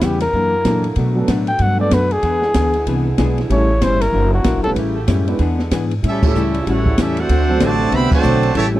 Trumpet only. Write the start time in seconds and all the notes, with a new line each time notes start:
0.04 G4
0.22 A#4
1.48 G5
1.62 F#5
1.81 D5
1.94 B4
2.12 G#4
3.52 C#5
3.83 C5
4.01 A#4
4.34 F#4
4.64 A4